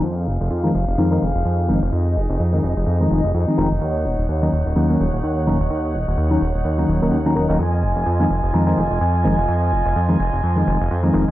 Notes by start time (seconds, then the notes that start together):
0.03 F2 D#4 G#4 F5
0.27 F1
0.40 F1
0.50 F2
0.63 D#3 F3 G#3 C4 D#4
0.74 F1
0.87 F1
0.97 F2 D#3 F3 G#3 C4 D#4
1.11 D#3 F3 G#3 C4 D#4
1.21 F1
1.35 F1
1.45 F2
1.68 F1 D#3 F3 G#3 C4 D#4
1.82 F1
1.92 F2 D#5
2.16 F1
2.29 F1
2.39 F2
2.53 D#3 F3 G#3 C4 D#4
2.63 F1
2.77 F1
2.86 F2
3.00 D#3 F3 G#3 C4 D#4
3.10 F1
3.24 F1
3.34 F2
3.47 D#3 F3 G#3 C4 D#4
3.57 F1 D#3 F3 G#3 C4 D#4
3.71 F1
3.81 D#2 C#5 F#5
4.05 D#1
4.18 D#1
4.28 D#2
4.42 D#3 F#3 A#3 C#4 D#4
4.52 D#1
4.66 D#1
4.75 D#2 D#3 F#3 A#3 C#4 D#4
4.89 D#3 F#3 A#3 C#4 D#4
5.00 D#1
5.13 D#1
5.23 D#2
5.46 D#1 D#3 F#3 A#3 C#4 D#4
5.60 D#1
5.70 D#2
5.94 D#1
6.07 D#1
6.17 D#2
6.30 D#3 F#3 A#3 C#4 D#4
6.41 D#1
6.54 D#1
6.64 D#2
6.78 D#3 F#3 A#3 C#4 D#4
6.88 D#1
7.01 D#1 D#3 F#3 A#3 C#4 D#4
7.11 D#2
7.25 D#3 F#3 A#3 C#4 D#4
7.35 D#1 D#3 F#3 A#3 C#4 D#4
7.49 D#1 D#3 F#3 A#3 C#4 D#4
7.59 F2 F4 D#5 G#5
7.82 F1
7.96 F1
8.06 F2
8.19 D#3 F3 G#3 C4 D#4
8.30 F1
8.43 F1
8.53 F2 D#3 F3 G#3 C4 D#4
8.67 D#3 F3 G#3 C4 D#4
8.77 F1
8.91 F1
9.01 F2
9.24 F1 D#3 F3 G#3 C4 D#4
9.38 F1
9.48 F2
9.72 F1
9.85 F1
9.96 F2
10.08 D#3 F3 G#3 C4 D#4
10.19 F1
10.33 F1
10.43 F2
10.56 D#3 F3 G#3 C4 D#4
10.67 F1
10.80 F1
10.91 F2
11.03 D#3 F3 G#3 C4 D#4
11.13 F1 D#3 F3 G#3 C4 D#4
11.28 F1